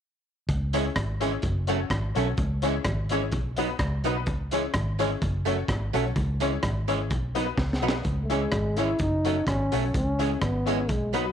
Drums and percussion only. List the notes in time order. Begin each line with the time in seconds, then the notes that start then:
0.49 kick, closed hi-hat
0.73 closed hi-hat
0.96 kick, cross-stick, closed hi-hat
1.21 closed hi-hat
1.42 kick, closed hi-hat
1.67 closed hi-hat
1.90 kick, cross-stick, closed hi-hat
2.15 closed hi-hat
2.37 kick, closed hi-hat
2.62 closed hi-hat
2.84 kick, cross-stick, closed hi-hat
3.09 closed hi-hat
3.32 kick, closed hi-hat
3.56 closed hi-hat
3.79 kick, cross-stick, closed hi-hat
4.04 closed hi-hat
4.26 kick, closed hi-hat
4.51 closed hi-hat
4.74 kick, cross-stick, closed hi-hat
4.99 closed hi-hat
5.22 kick, closed hi-hat
5.46 closed hi-hat
5.68 kick, cross-stick, closed hi-hat
5.94 closed hi-hat
6.16 kick, closed hi-hat
6.40 closed hi-hat
6.63 kick, cross-stick, closed hi-hat
6.88 closed hi-hat
7.10 kick, closed hi-hat
7.35 closed hi-hat
7.58 kick, snare
7.73 snare
7.88 snare
8.04 kick, closed hi-hat
8.30 closed hi-hat
8.52 kick, cross-stick, closed hi-hat
8.77 closed hi-hat
8.99 kick, closed hi-hat
9.25 closed hi-hat
9.47 kick, cross-stick, closed hi-hat
9.72 closed hi-hat
9.94 kick, closed hi-hat
10.19 closed hi-hat
10.41 kick, cross-stick, closed hi-hat
10.67 closed hi-hat
10.89 kick, closed hi-hat
11.14 closed hi-hat